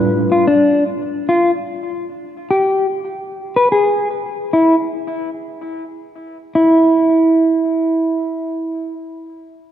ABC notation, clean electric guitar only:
X:1
M:4/4
L:1/16
Q:"Swing 16ths" 1/4=74
K:Gmix
V:1 name="Clean electric guitar"
z F D2 z2 F z4 z G2 z2 | z B ^G2 z2 E z8 z | E12 z4 |]